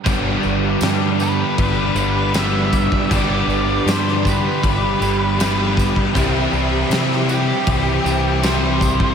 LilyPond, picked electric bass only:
\new Staff \with { instrumentName = "Picked electric bass" } { \clef bass \time 4/4 \key g \major \tempo 4 = 79 g,,8 g,,8 g,4 g,,8 g,,4. | g,,8 g,,8 g,4 g,,8 g,,4. | c,8 c,8 c4 c,8 c,4. | }